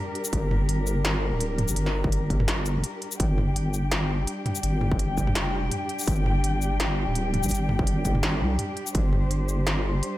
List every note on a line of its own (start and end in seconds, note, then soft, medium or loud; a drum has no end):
0.00 3.16 G3 medium
0.00 3.16 D4 medium
0.00 3.16 G4 medium
0.00 3.18 A#4 medium
0.15 closed hi-hat soft
0.25 shaker medium
0.33 1.31 G1 loud
0.33 kick loud
0.33 closed hi-hat medium
0.51 mid tom medium
0.69 closed hi-hat medium
0.87 shaker soft
1.05 snare loud
1.05 closed hi-hat medium
1.32 1.67 D1 medium
1.41 closed hi-hat medium
1.58 closed hi-hat soft
1.58 mid tom medium
1.68 1.76 G1 medium
1.68 shaker medium
1.76 2.78 G1 loud
1.76 closed hi-hat medium
1.86 snare soft
2.04 kick loud
2.12 closed hi-hat medium
2.30 kick medium
2.30 closed hi-hat soft
2.40 mid tom medium
2.48 snare loud
2.48 closed hi-hat medium
2.66 closed hi-hat soft
2.66 shaker soft
2.76 2.84 F1 loud
2.84 closed hi-hat medium
3.02 closed hi-hat soft
3.12 shaker medium
3.20 4.27 G1 loud
3.20 10.18 G3 medium
3.20 10.18 D4 medium
3.20 10.18 G4 medium
3.20 8.93 G5 medium
3.20 kick loud
3.20 closed hi-hat medium
3.38 mid tom medium
3.56 closed hi-hat medium
3.74 shaker soft
3.92 snare loud
3.92 closed hi-hat medium
4.27 closed hi-hat medium
4.46 closed hi-hat soft
4.46 mid tom medium
4.55 shaker medium
4.63 5.37 G1 loud
4.63 closed hi-hat medium
4.81 mid tom medium
4.92 kick loud
4.99 closed hi-hat medium
5.18 kick medium
5.18 shaker soft
5.27 mid tom medium
5.35 5.71 F1 medium
5.35 snare loud
5.35 closed hi-hat medium
5.71 closed hi-hat medium
5.71 mid tom soft
5.89 closed hi-hat soft
5.99 shaker medium
6.01 shaker soft
6.03 shaker soft
6.08 7.06 G1 loud
6.08 kick loud
6.08 closed hi-hat medium
6.08 shaker soft
6.15 shaker soft
6.26 mid tom medium
6.44 closed hi-hat medium
6.62 shaker soft
6.80 snare loud
6.80 closed hi-hat medium
7.07 7.42 D1 medium
7.15 closed hi-hat medium
7.34 closed hi-hat soft
7.34 mid tom medium
7.43 7.51 G1 medium
7.43 shaker medium
7.49 8.43 G1 loud
7.49 closed hi-hat medium
7.49 shaker soft
7.54 shaker soft
7.69 mid tom medium
7.79 kick loud
7.87 closed hi-hat medium
8.05 kick medium
8.05 closed hi-hat soft
8.05 shaker soft
8.15 mid tom medium
8.23 snare loud
8.23 closed hi-hat medium
8.41 8.58 C2 loud
8.59 closed hi-hat medium
8.59 mid tom soft
8.77 closed hi-hat soft
8.87 shaker medium
8.95 10.02 G1 loud
8.95 10.18 C5 medium
8.95 kick loud
8.95 closed hi-hat medium
9.13 mid tom medium
9.31 closed hi-hat medium
9.49 shaker soft
9.67 snare loud
9.67 closed hi-hat medium
10.03 closed hi-hat medium